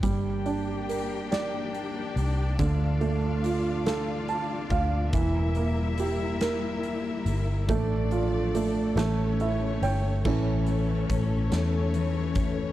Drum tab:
CC |------|------|------|------|
HH |xxxxxx|xxxxxx|xxxxxx|xxxxxx|
SD |---o--|---o--|---o--|---o--|
BD |o-----|o----o|o-----|o-----|

CC |x-----|
HH |-xxxxx|
SD |---o--|
BD |o-o--o|